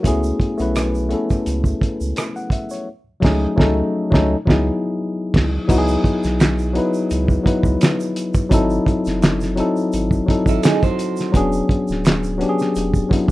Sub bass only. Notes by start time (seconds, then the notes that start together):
0.05 C#2
0.60 B1
1.47 C#2
2.01 C#2
3.23 C#2
3.58 C#2
4.12 C#2
4.48 C#2
5.35 C#2
5.70 C#2
6.24 B1
7.11 C#2
7.64 C#2
8.52 G#1
9.07 F#1
9.94 G#1
10.46 G#1
11.34 E1
11.89 D1
12.76 E1